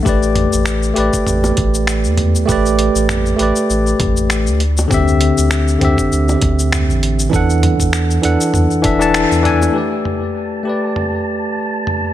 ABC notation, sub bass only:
X:1
M:4/4
L:1/16
Q:"Swing 16ths" 1/4=99
K:Am
V:1 name="Sub bass" clef=bass
A,,,3 A,,,3 A,,, z A,,,2 A,,,3 E,,3 | A,,,3 A,,,3 A,,, z A,,,2 A,,,3 D,,3 | D,,3 D,,3 D,, z D,,2 D,,3 A,,,3 | E,,3 E,,3 E,, z E,, z E,,,3 E,,3 |
z16 |]